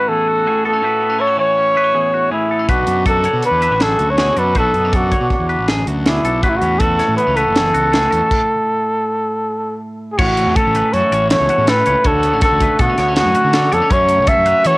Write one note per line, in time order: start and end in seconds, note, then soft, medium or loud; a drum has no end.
0.00 0.44 A2 medium
0.00 0.81 E3 medium
0.00 1.03 A3 medium
0.00 0.64 C#4 medium
0.00 0.46 F#4 medium
0.00 0.10 B4 medium
0.08 0.46 E2 medium
0.08 0.28 G#4 medium
0.08 0.64 A4 loud
0.28 0.47 F#4 medium
0.46 0.81 A2 medium
0.46 0.82 F#4 medium
0.46 0.65 G#4 medium
0.65 0.73 B3 medium
0.65 0.84 A4 medium
0.65 1.22 A4 medium
0.73 0.83 C#4 medium
0.82 2.30 A2 medium
0.82 1.18 F#4 medium
0.82 1.21 B4 medium
1.00 1.10 B3 medium
1.10 1.56 C#4 soft
1.18 1.27 E4 medium
1.18 1.39 A4 medium
1.18 1.39 C#5 medium
1.27 1.75 F#4 medium
1.37 2.66 E3 medium
1.37 1.76 C#5 medium
1.37 2.28 C#5 medium
1.57 2.31 C#4 medium
1.75 1.84 E4 medium
1.75 1.95 B4 medium
1.84 2.68 F#4 soft
1.94 2.31 E2 medium
1.94 2.13 G#4 medium
2.14 2.31 F#4 medium
2.31 2.69 A2 medium
2.31 2.49 C#4 medium
2.31 2.72 E4 medium
2.31 2.50 G#4 medium
2.49 2.59 B3 medium
2.49 2.69 A4 medium
2.59 2.69 C#4 medium
2.69 2.84 B1 medium
2.69 3.25 B2 medium
2.69 2.88 D4 medium
2.69 3.07 F#4 medium
2.69 3.06 B4 medium
2.69 kick medium
2.69 closed hi-hat medium
2.87 3.26 F#2 medium
2.87 3.43 D4 medium
2.87 closed hi-hat medium
3.06 3.61 F#4 medium
3.06 3.25 A4 medium
3.06 3.42 A4 medium
3.06 kick loud
3.06 closed hi-hat medium
3.24 5.12 D3 medium
3.24 3.62 C#5 medium
3.24 closed hi-hat medium
3.34 3.42 B2 medium
3.43 4.37 D4 medium
3.43 3.84 B4 medium
3.43 closed hi-hat medium
3.51 3.68 E2 medium
3.61 3.72 E4 medium
3.61 3.81 B4 medium
3.61 closed hi-hat medium
3.71 3.95 A1 medium
3.71 4.19 F#4 medium
3.81 4.19 F#2 medium
3.81 3.99 G#4 medium
3.81 4.12 A4 medium
3.81 snare loud
3.81 closed hi-hat medium
3.99 4.31 D2 medium
3.99 4.18 F#4 medium
3.99 closed hi-hat soft
4.10 4.40 C#5 medium
4.18 4.54 B2 medium
4.18 4.56 F#4 medium
4.18 4.37 G#4 medium
4.18 snare loud
4.18 closed hi-hat medium
4.37 4.57 F#2 medium
4.37 4.54 D4 medium
4.37 4.56 A4 medium
4.37 4.57 B4 medium
4.37 closed hi-hat medium
4.55 4.71 B1 loud
4.55 5.12 B2 medium
4.55 6.80 F#4 medium
4.55 4.97 A4 medium
4.55 4.92 B4 medium
4.55 kick medium
4.55 closed hi-hat medium
4.74 5.13 F#2 medium
4.74 4.85 B3 medium
4.74 closed hi-hat medium
4.85 4.94 D4 soft
4.93 5.32 D4 medium
4.93 5.69 F#4 medium
4.93 5.12 A4 medium
4.93 kick loud
4.93 closed hi-hat medium
5.12 6.44 D3 medium
5.12 5.49 C#5 medium
5.12 kick medium
5.12 closed hi-hat medium
5.20 5.29 B2 medium
5.30 5.50 D4 medium
5.30 kick medium
5.30 snare soft
5.30 closed hi-hat medium
5.39 5.55 E2 medium
5.49 6.06 D4 medium
5.49 5.68 B4 medium
5.49 closed hi-hat medium
5.59 5.82 A1 medium
5.68 6.06 F#2 medium
5.68 5.87 G#4 medium
5.68 snare loud
5.68 closed hi-hat medium
5.86 6.18 D2 medium
5.86 6.06 F#4 medium
5.86 closed hi-hat medium
6.05 6.41 B2 medium
6.05 6.24 D4 medium
6.05 6.44 E4 medium
6.05 6.25 G#4 medium
6.05 snare loud
6.05 closed hi-hat medium
6.23 6.43 B1 medium
6.23 6.42 D4 medium
6.23 6.43 A4 medium
6.23 closed hi-hat medium
6.43 6.59 A1 loud
6.43 7.56 A2 medium
6.43 6.61 C#4 medium
6.43 6.50 F#4 medium
6.43 6.81 B4 medium
6.43 kick medium
6.43 closed hi-hat medium
6.49 6.58 E4 medium
6.56 6.80 F#4 medium
6.61 7.01 E2 medium
6.61 7.17 C#4 medium
6.61 closed hi-hat medium
6.79 7.35 F#4 medium
6.79 7.16 A4 medium
6.79 6.99 A4 medium
6.79 kick loud
6.79 closed hi-hat medium
6.98 8.28 E3 medium
6.98 7.36 C#5 medium
6.98 snare soft
6.98 closed hi-hat medium
7.08 7.16 A2 medium
7.17 7.27 B3 medium
7.17 7.38 B4 medium
7.17 closed hi-hat medium
7.27 7.43 C#2 medium
7.27 8.11 C#4 soft
7.36 7.92 F#4 medium
7.36 9.81 A4 loud
7.36 7.55 B4 medium
7.36 closed hi-hat soft
7.46 7.70 F#1 medium
7.54 7.93 E2 medium
7.54 7.75 G#4 medium
7.54 snare loud
7.54 closed hi-hat medium
7.74 8.06 C#2 medium
7.74 7.92 F#4 medium
7.74 closed hi-hat soft
7.92 10.17 A2 medium
7.92 8.29 F#4 soft
7.92 8.11 G#4 medium
7.92 snare loud
7.92 closed hi-hat medium
8.11 8.20 E2 medium
8.11 8.29 C#4 medium
8.11 8.30 A4 medium
8.11 closed hi-hat medium
8.31 kick medium
8.31 crash medium
10.12 10.20 G#4 medium
10.18 10.47 A1 loud
10.18 11.31 A2 medium
10.18 10.57 C#4 medium
10.18 10.57 F#4 medium
10.18 10.56 C#5 medium
10.18 kick loud
10.18 crash loud
10.37 11.31 A3 medium
10.37 closed hi-hat medium
10.47 10.55 E2 medium
10.56 11.13 C#4 medium
10.56 10.95 A4 medium
10.56 10.75 A4 medium
10.56 kick loud
10.56 closed hi-hat loud
10.66 10.81 A1 medium
10.74 12.03 E3 medium
10.74 10.93 B4 medium
10.74 closed hi-hat medium
10.93 11.01 F#2 medium
10.93 12.05 F#4 medium
10.93 11.12 A4 medium
10.93 11.30 C#5 medium
10.93 closed hi-hat medium
11.11 11.35 A1 medium
11.11 11.49 C#4 medium
11.11 11.50 C#5 medium
11.11 closed hi-hat medium
11.30 11.68 E2 medium
11.30 11.87 A3 medium
11.30 11.71 C#5 medium
11.30 snare loud
11.30 closed hi-hat loud
11.40 11.48 C#2 medium
11.49 11.68 C#4 medium
11.49 11.68 F#4 medium
11.49 closed hi-hat medium
11.58 11.82 A2 medium
11.68 12.05 A2 medium
11.68 12.08 C#4 medium
11.68 11.86 A4 medium
11.68 12.09 B4 medium
11.68 snare loud
11.68 closed hi-hat loud
11.86 11.95 C#2 medium
11.86 12.27 A3 soft
11.86 12.04 C#5 medium
11.86 closed hi-hat medium
12.05 12.33 D2 loud
12.05 13.53 D3 medium
12.05 12.42 F#4 medium
12.05 12.43 A4 medium
12.05 12.42 C#5 medium
12.05 kick loud
12.05 closed hi-hat loud
12.23 12.34 B3 medium
12.23 closed hi-hat medium
12.33 12.41 A1 medium
12.33 12.79 C#4 soft
12.42 14.64 F#4 medium
12.42 12.62 A4 medium
12.42 12.82 A4 loud
12.42 kick loud
12.42 snare soft
12.42 closed hi-hat loud
12.51 12.67 D2 medium
12.61 14.09 A3 medium
12.61 12.79 B4 medium
12.61 kick medium
12.61 closed hi-hat medium
12.79 12.87 B2 medium
12.79 12.90 B3 medium
12.79 13.15 F#4 medium
12.79 12.98 A4 medium
12.79 kick loud
12.79 closed hi-hat medium
12.90 12.99 C#4 medium
12.98 13.21 D2 medium
12.98 13.08 B3 medium
12.98 13.35 C#5 medium
12.98 snare soft
12.98 closed hi-hat medium
13.08 13.17 C#4 soft
13.16 13.54 A2 medium
13.16 13.26 B3 medium
13.16 13.75 F#4 loud
13.16 snare loud
13.16 closed hi-hat medium
13.26 13.34 F#2 medium
13.26 13.35 C#4 medium
13.35 13.55 C#4 medium
13.35 13.54 F#4 medium
13.35 closed hi-hat medium
13.44 13.67 D3 loud
13.53 13.91 D3 medium
13.53 13.72 C#4 medium
13.53 13.71 A4 medium
13.53 snare loud
13.53 closed hi-hat medium
13.71 13.80 F2 medium
13.71 13.82 B3 medium
13.71 13.94 A4 medium
13.71 13.89 C#5 medium
13.71 closed hi-hat medium
13.82 13.90 C#4 medium
13.90 14.20 F#2 loud
13.90 14.78 F#2 medium
13.90 14.27 C#4 medium
13.90 14.27 C#5 medium
13.90 14.30 C#5 medium
13.90 kick loud
13.90 closed hi-hat medium
14.08 14.78 A3 medium
14.08 closed hi-hat medium
14.18 14.26 C#2 medium
14.27 14.78 C#4 medium
14.27 14.46 A4 medium
14.27 14.68 E5 loud
14.27 kick loud
14.27 closed hi-hat loud
14.37 14.52 F#2 medium
14.46 14.78 F#3 medium
14.46 14.63 B4 medium
14.46 closed hi-hat medium
14.63 14.73 E3 medium
14.63 14.78 E4 medium
14.63 14.78 A4 medium
14.63 14.78 C#5 loud
14.63 closed hi-hat medium